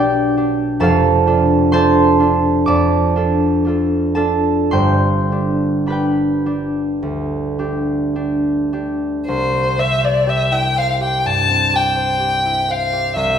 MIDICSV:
0, 0, Header, 1, 3, 480
1, 0, Start_track
1, 0, Key_signature, 0, "major"
1, 0, Tempo, 907716
1, 438, Time_signature, 4, 2, 24, 8
1, 921, Tempo, 967742
1, 1881, Tempo, 1069519
1, 2361, Tempo, 1147228
1, 3321, Tempo, 1115242
1, 4281, Tempo, 998336
1, 4761, Tempo, 958466
1, 6322, End_track
2, 0, Start_track
2, 0, Title_t, "Violin"
2, 0, Program_c, 0, 40
2, 4282, Note_on_c, 0, 72, 68
2, 4529, Note_on_c, 0, 76, 71
2, 4536, Note_off_c, 0, 72, 0
2, 4652, Note_on_c, 0, 74, 65
2, 4659, Note_off_c, 0, 76, 0
2, 4772, Note_on_c, 0, 76, 64
2, 4779, Note_off_c, 0, 74, 0
2, 4887, Note_on_c, 0, 79, 64
2, 4895, Note_off_c, 0, 76, 0
2, 5016, Note_on_c, 0, 77, 58
2, 5023, Note_off_c, 0, 79, 0
2, 5130, Note_off_c, 0, 77, 0
2, 5143, Note_on_c, 0, 79, 63
2, 5258, Note_on_c, 0, 81, 77
2, 5265, Note_off_c, 0, 79, 0
2, 5501, Note_on_c, 0, 79, 64
2, 5509, Note_off_c, 0, 81, 0
2, 5979, Note_on_c, 0, 77, 66
2, 5986, Note_off_c, 0, 79, 0
2, 6209, Note_off_c, 0, 77, 0
2, 6212, Note_on_c, 0, 76, 66
2, 6322, Note_off_c, 0, 76, 0
2, 6322, End_track
3, 0, Start_track
3, 0, Title_t, "Harp"
3, 0, Program_c, 1, 46
3, 0, Note_on_c, 1, 35, 59
3, 0, Note_on_c, 1, 47, 62
3, 0, Note_on_c, 1, 62, 48
3, 0, Note_on_c, 1, 67, 75
3, 0, Note_on_c, 1, 71, 81
3, 0, Note_on_c, 1, 72, 71
3, 0, Note_on_c, 1, 74, 77
3, 0, Note_on_c, 1, 79, 90
3, 0, Note_on_c, 1, 83, 109
3, 0, Note_on_c, 1, 86, 108
3, 191, Note_off_c, 1, 62, 0
3, 193, Note_off_c, 1, 67, 0
3, 196, Note_on_c, 1, 62, 47
3, 201, Note_on_c, 1, 67, 50
3, 423, Note_on_c, 1, 41, 74
3, 425, Note_on_c, 1, 29, 63
3, 425, Note_on_c, 1, 81, 105
3, 430, Note_on_c, 1, 69, 85
3, 439, Note_on_c, 1, 77, 79
3, 453, Note_off_c, 1, 35, 0
3, 454, Note_off_c, 1, 79, 0
3, 454, Note_off_c, 1, 83, 0
3, 456, Note_off_c, 1, 67, 0
3, 456, Note_off_c, 1, 71, 0
3, 456, Note_off_c, 1, 72, 0
3, 457, Note_off_c, 1, 47, 0
3, 549, Note_off_c, 1, 86, 0
3, 668, Note_off_c, 1, 62, 0
3, 668, Note_off_c, 1, 69, 0
3, 672, Note_on_c, 1, 65, 47
3, 673, Note_on_c, 1, 62, 53
3, 676, Note_on_c, 1, 69, 48
3, 910, Note_off_c, 1, 62, 0
3, 910, Note_off_c, 1, 81, 0
3, 910, Note_on_c, 1, 84, 127
3, 914, Note_on_c, 1, 72, 94
3, 915, Note_off_c, 1, 65, 0
3, 915, Note_off_c, 1, 69, 0
3, 916, Note_on_c, 1, 62, 54
3, 917, Note_on_c, 1, 81, 98
3, 919, Note_on_c, 1, 65, 54
3, 923, Note_on_c, 1, 69, 58
3, 1140, Note_off_c, 1, 62, 0
3, 1145, Note_off_c, 1, 65, 0
3, 1146, Note_on_c, 1, 62, 45
3, 1147, Note_off_c, 1, 69, 0
3, 1151, Note_on_c, 1, 65, 42
3, 1153, Note_on_c, 1, 69, 49
3, 1376, Note_on_c, 1, 86, 86
3, 1377, Note_off_c, 1, 81, 0
3, 1379, Note_off_c, 1, 41, 0
3, 1379, Note_off_c, 1, 74, 0
3, 1383, Note_on_c, 1, 41, 59
3, 1384, Note_on_c, 1, 81, 71
3, 1385, Note_on_c, 1, 74, 65
3, 1619, Note_off_c, 1, 62, 0
3, 1619, Note_off_c, 1, 65, 0
3, 1624, Note_off_c, 1, 69, 0
3, 1624, Note_on_c, 1, 62, 49
3, 1627, Note_on_c, 1, 65, 45
3, 1630, Note_on_c, 1, 69, 52
3, 1724, Note_off_c, 1, 84, 0
3, 1864, Note_off_c, 1, 62, 0
3, 1866, Note_on_c, 1, 62, 36
3, 1869, Note_off_c, 1, 69, 0
3, 1870, Note_off_c, 1, 65, 0
3, 1875, Note_on_c, 1, 65, 36
3, 1883, Note_on_c, 1, 69, 45
3, 2087, Note_off_c, 1, 81, 0
3, 2092, Note_off_c, 1, 69, 0
3, 2093, Note_on_c, 1, 81, 77
3, 2095, Note_off_c, 1, 62, 0
3, 2096, Note_off_c, 1, 65, 0
3, 2097, Note_on_c, 1, 69, 67
3, 2099, Note_on_c, 1, 62, 40
3, 2103, Note_on_c, 1, 65, 39
3, 2341, Note_off_c, 1, 29, 0
3, 2345, Note_on_c, 1, 84, 93
3, 2347, Note_off_c, 1, 72, 0
3, 2349, Note_on_c, 1, 31, 47
3, 2350, Note_on_c, 1, 43, 50
3, 2352, Note_on_c, 1, 72, 71
3, 2352, Note_on_c, 1, 79, 75
3, 2353, Note_off_c, 1, 77, 0
3, 2370, Note_off_c, 1, 81, 0
3, 2372, Note_off_c, 1, 69, 0
3, 2374, Note_off_c, 1, 65, 0
3, 2378, Note_off_c, 1, 41, 0
3, 2596, Note_off_c, 1, 62, 0
3, 2600, Note_on_c, 1, 62, 37
3, 2603, Note_on_c, 1, 67, 38
3, 2826, Note_off_c, 1, 62, 0
3, 2828, Note_on_c, 1, 62, 41
3, 2833, Note_on_c, 1, 83, 71
3, 2835, Note_off_c, 1, 67, 0
3, 2835, Note_off_c, 1, 79, 0
3, 2837, Note_on_c, 1, 67, 43
3, 2844, Note_on_c, 1, 71, 53
3, 2852, Note_on_c, 1, 79, 54
3, 3073, Note_off_c, 1, 62, 0
3, 3075, Note_off_c, 1, 67, 0
3, 3078, Note_on_c, 1, 62, 35
3, 3080, Note_on_c, 1, 67, 33
3, 3119, Note_off_c, 1, 86, 0
3, 3127, Note_off_c, 1, 74, 0
3, 3173, Note_off_c, 1, 84, 0
3, 3314, Note_on_c, 1, 38, 42
3, 3551, Note_off_c, 1, 62, 0
3, 3554, Note_off_c, 1, 67, 0
3, 3556, Note_on_c, 1, 62, 33
3, 3559, Note_on_c, 1, 67, 41
3, 3796, Note_off_c, 1, 67, 0
3, 3797, Note_off_c, 1, 62, 0
3, 3801, Note_on_c, 1, 62, 34
3, 3802, Note_on_c, 1, 67, 34
3, 4000, Note_off_c, 1, 31, 0
3, 4001, Note_off_c, 1, 43, 0
3, 4004, Note_off_c, 1, 72, 0
3, 4042, Note_off_c, 1, 62, 0
3, 4045, Note_off_c, 1, 67, 0
3, 4047, Note_on_c, 1, 62, 34
3, 4051, Note_on_c, 1, 67, 39
3, 4286, Note_on_c, 1, 36, 50
3, 4293, Note_off_c, 1, 83, 0
3, 4297, Note_off_c, 1, 38, 0
3, 4297, Note_off_c, 1, 71, 0
3, 4301, Note_off_c, 1, 62, 0
3, 4402, Note_on_c, 1, 60, 36
3, 4522, Note_off_c, 1, 67, 0
3, 4528, Note_on_c, 1, 67, 36
3, 4545, Note_off_c, 1, 79, 0
3, 4644, Note_on_c, 1, 72, 40
3, 4755, Note_off_c, 1, 67, 0
3, 4761, Note_on_c, 1, 67, 45
3, 4885, Note_on_c, 1, 64, 38
3, 5003, Note_off_c, 1, 72, 0
3, 5009, Note_on_c, 1, 72, 34
3, 5124, Note_off_c, 1, 67, 0
3, 5130, Note_on_c, 1, 67, 41
3, 5251, Note_on_c, 1, 43, 37
3, 5367, Note_off_c, 1, 60, 0
3, 5373, Note_on_c, 1, 60, 36
3, 5487, Note_off_c, 1, 67, 0
3, 5493, Note_on_c, 1, 67, 35
3, 5600, Note_off_c, 1, 72, 0
3, 5606, Note_on_c, 1, 72, 38
3, 5721, Note_off_c, 1, 67, 0
3, 5727, Note_on_c, 1, 67, 33
3, 5848, Note_off_c, 1, 64, 0
3, 5854, Note_on_c, 1, 64, 36
3, 5964, Note_off_c, 1, 72, 0
3, 5970, Note_on_c, 1, 72, 35
3, 6087, Note_off_c, 1, 67, 0
3, 6093, Note_on_c, 1, 67, 33
3, 6202, Note_off_c, 1, 36, 0
3, 6208, Note_on_c, 1, 36, 44
3, 6228, Note_off_c, 1, 43, 0
3, 6310, Note_off_c, 1, 60, 0
3, 6322, Note_off_c, 1, 36, 0
3, 6322, Note_off_c, 1, 64, 0
3, 6322, Note_off_c, 1, 67, 0
3, 6322, Note_off_c, 1, 72, 0
3, 6322, End_track
0, 0, End_of_file